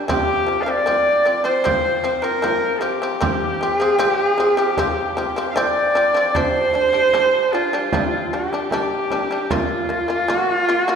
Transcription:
0.08 0.40 F3 medium
0.08 0.41 C4 loud
0.08 0.64 G4 loud
0.08 frame drum medium
0.47 0.64 F3 medium
0.47 0.64 C4 medium
0.47 frame drum soft
0.63 0.83 F3 medium
0.63 0.71 F5 medium
0.68 0.84 C4 medium
0.68 1.44 D5 loud
0.86 1.18 F3 medium
0.86 1.19 C4 medium
0.86 frame drum medium
1.25 1.42 F3 medium
1.25 1.42 C4 medium
1.25 frame drum soft
1.44 1.61 F3 medium
1.44 1.61 C4 medium
1.44 2.24 C5 loud
1.64 1.97 F3 medium
1.64 1.97 C4 loud
1.64 frame drum medium
2.04 2.20 F3 medium
2.04 2.21 C4 medium
2.22 2.39 F3 medium
2.22 2.40 C4 medium
2.22 2.82 A#4 loud
2.42 2.75 F3 medium
2.42 2.75 C4 loud
2.42 frame drum medium
2.80 2.98 F3 medium
2.80 2.98 C4 medium
2.80 3.75 G4 loud
2.80 frame drum soft
3.02 3.18 F3 medium
3.02 3.19 C4 medium
3.21 3.53 F3 loud
3.21 3.53 C4 loud
3.21 frame drum medium
3.60 3.77 F3 medium
3.60 3.78 C4 medium
3.60 frame drum soft
3.75 4.01 G#4 loud
3.80 3.96 F3 medium
3.80 3.97 C4 medium
3.99 4.31 F3 loud
3.99 4.32 C4 loud
3.99 4.29 G4 loud
3.99 frame drum medium
4.29 4.55 G#4 loud
4.38 4.55 F3 medium
4.38 4.56 C4 medium
4.38 frame drum soft
4.55 4.74 F3 medium
4.55 4.75 C4 medium
4.55 5.49 G4 loud
4.77 5.10 F3 loud
4.77 5.10 C4 loud
4.77 frame drum medium
5.17 5.33 F3 medium
5.17 5.34 C4 medium
5.17 frame drum soft
5.36 5.53 F3 medium
5.36 5.54 C4 medium
5.51 5.58 F5 medium
5.56 5.88 F3 loud
5.56 5.89 C4 loud
5.56 6.37 D5 medium
5.56 frame drum medium
5.95 6.12 F3 medium
5.95 6.12 C4 medium
5.95 frame drum soft
6.14 6.31 F3 medium
6.14 6.32 C4 medium
6.35 6.67 G3 medium
6.35 6.68 D4 loud
6.35 7.55 C5 loud
6.35 frame drum medium
6.74 6.90 G3 medium
6.74 6.91 D4 medium
6.93 7.10 G3 medium
6.93 7.10 D4 medium
6.93 frame drum soft
7.13 7.46 G3 medium
7.13 7.46 D4 loud
7.13 frame drum medium
7.53 7.69 G3 medium
7.53 7.70 D4 medium
7.53 8.35 F4 medium
7.73 7.89 G3 medium
7.73 7.90 D4 medium
7.92 8.25 G3 medium
7.92 8.25 D4 medium
7.92 frame drum medium
8.32 8.49 G3 medium
8.32 8.49 D4 medium
8.32 8.72 G4 medium
8.32 frame drum soft
8.53 8.68 G3 medium
8.53 8.69 D4 medium
8.53 frame drum soft
8.71 9.03 G3 medium
8.71 9.04 D4 loud
8.71 9.54 G4 medium
8.71 frame drum medium
9.10 9.27 G3 medium
9.10 9.27 D4 medium
9.10 frame drum medium
9.31 9.46 G3 medium
9.31 9.47 D4 medium
9.50 9.82 A#3 medium
9.50 9.82 F4 loud
9.50 10.35 F4 loud
9.50 frame drum medium
9.89 10.05 A#3 medium
9.89 10.06 F4 medium
10.08 10.24 A#3 medium
10.08 10.25 F4 medium
10.08 frame drum soft
10.28 10.60 A#3 medium
10.28 10.61 F4 loud
10.28 frame drum medium
10.35 10.58 F#4 loud
10.58 10.82 F4 loud
10.69 10.84 A#3 medium
10.69 10.85 F4 medium
10.82 10.96 F#4 loud
10.88 10.96 A#3 medium
10.88 10.96 F4 loud

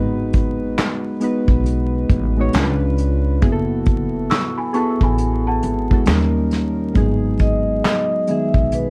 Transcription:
0.00 0.74 G#1 medium
0.00 0.82 G#3 medium
0.00 0.83 B3 medium
0.00 0.83 D#4 medium
0.00 0.84 F#4 medium
0.00 0.84 B4 loud
0.33 kick medium
0.33 closed hi-hat medium
0.79 snare loud
0.79 clap medium
0.79 closed hi-hat medium
1.20 2.01 G#3 medium
1.20 2.02 B3 medium
1.20 2.02 D#4 medium
1.20 2.03 F#4 medium
1.20 2.03 B4 medium
1.20 closed hi-hat medium
1.48 2.06 B1 medium
1.48 kick medium
1.66 closed hi-hat medium
2.10 2.52 A1 medium
2.10 kick loud
2.10 closed hi-hat medium
2.37 2.52 G#3 medium
2.37 2.54 B3 medium
2.37 2.55 D#4 medium
2.37 2.55 F#4 medium
2.37 2.56 C#5 loud
2.53 3.38 C#2 medium
2.53 3.29 G#3 medium
2.53 3.30 C#4 medium
2.53 3.30 D4 medium
2.53 3.31 F4 medium
2.53 snare loud
2.53 clap medium
2.53 closed hi-hat medium
2.57 2.64 A#4 medium
2.63 3.34 B4 loud
2.98 closed hi-hat medium
3.42 4.27 F#1 loud
3.42 4.37 B3 medium
3.42 4.37 E4 medium
3.42 4.38 F#4 medium
3.42 3.45 G#4 medium
3.42 kick loud
3.42 closed hi-hat medium
3.46 3.52 G#4 medium
3.52 4.41 A4 loud
3.86 kick medium
3.86 closed hi-hat medium
4.30 4.57 C#6 medium
4.30 4.57 E6 medium
4.30 snare loud
4.30 clap medium
4.30 closed hi-hat medium
4.58 4.74 G#5 medium
4.58 4.74 B5 medium
4.73 5.55 B3 medium
4.73 5.55 E4 medium
4.73 5.56 F#4 medium
4.73 5.54 G#4 medium
4.73 5.56 A4 medium
4.73 5.01 A5 medium
4.73 5.01 C#6 medium
4.73 closed hi-hat medium
5.01 5.59 A1 medium
5.01 5.45 G#5 medium
5.01 5.45 B5 medium
5.01 kick medium
5.18 closed hi-hat medium
5.47 6.05 F#5 medium
5.47 6.04 A5 medium
5.63 6.05 G#1 medium
5.63 closed hi-hat medium
5.90 6.07 G#3 medium
5.90 6.07 B3 medium
5.90 6.08 E4 medium
5.90 6.08 F#4 medium
5.90 6.09 A4 medium
5.90 kick medium
6.06 6.92 D#2 loud
6.06 6.82 G3 medium
6.06 6.82 A#3 medium
6.06 6.83 C#4 medium
6.06 6.83 D#4 medium
6.06 6.84 A#4 medium
6.06 snare loud
6.06 clap medium
6.06 closed hi-hat medium
6.51 snare soft
6.51 closed hi-hat medium
6.94 7.80 G#1 loud
6.94 7.89 F#3 medium
6.94 7.89 G#3 medium
6.94 7.90 B3 medium
6.94 7.90 D#4 medium
6.94 7.90 G#4 loud
6.94 kick loud
6.94 closed hi-hat medium
7.39 7.83 D#5 medium
7.39 kick medium
7.39 closed hi-hat medium
7.85 8.30 D#5 loud
7.85 snare loud
7.85 clap medium
7.85 closed hi-hat medium
8.27 8.90 D#3 medium
8.27 8.90 F#3 medium
8.27 8.90 G#3 medium
8.27 8.90 B3 medium
8.27 8.90 G#4 medium
8.27 8.74 E5 loud
8.27 closed hi-hat medium
8.54 8.90 B1 medium
8.54 kick medium
8.72 8.90 B4 medium
8.72 closed hi-hat medium

